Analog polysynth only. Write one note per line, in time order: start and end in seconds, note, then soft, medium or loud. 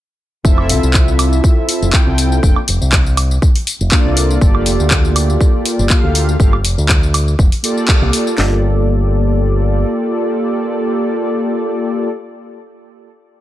0.44 1.90 C4 medium
0.44 1.90 E4 medium
0.44 1.91 F4 medium
0.44 1.91 A4 medium
0.44 1.91 E5 loud
1.93 2.40 C4 medium
1.93 2.40 E4 medium
1.93 2.40 F4 medium
1.93 2.40 A4 medium
1.93 2.41 G5 medium
2.43 2.58 A#3 medium
2.43 2.58 D4 medium
2.43 2.58 F4 medium
2.43 2.58 A4 medium
2.43 2.58 G5 loud
3.91 4.38 A#3 loud
3.91 4.39 D4 medium
3.91 4.39 F4 medium
3.91 4.39 A4 medium
3.91 4.39 D5 loud
4.40 5.87 A#3 medium
4.40 5.87 F4 medium
4.40 5.87 G4 medium
4.40 5.88 A4 medium
4.40 5.88 D5 loud
5.90 6.37 A#3 medium
5.90 6.37 F4 medium
5.90 6.37 G4 medium
5.90 6.37 A4 medium
5.90 6.37 F5 medium
6.39 6.55 A#3 medium
6.39 6.55 F4 medium
6.39 6.55 G4 medium
6.39 6.55 A4 medium
6.39 6.55 F5 loud
7.63 8.35 A#3 medium
7.63 8.35 F4 medium
7.63 8.35 G4 medium
7.63 8.36 A4 medium
7.63 8.36 D5 medium
8.37 12.08 A#3 medium
8.37 12.08 F4 medium
8.37 12.09 G4 medium
8.37 12.10 A4 medium
8.37 12.11 D5 medium